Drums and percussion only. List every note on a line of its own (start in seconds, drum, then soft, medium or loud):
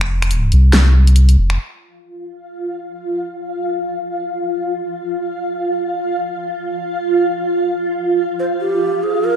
0.01 finger snap medium
0.22 finger snap medium
0.22 closed hi-hat medium
0.31 closed hi-hat medium
0.52 closed hi-hat medium
0.73 snare loud
0.73 closed hi-hat medium
1.07 closed hi-hat medium
1.16 closed hi-hat medium
1.29 closed hi-hat medium
1.50 finger snap medium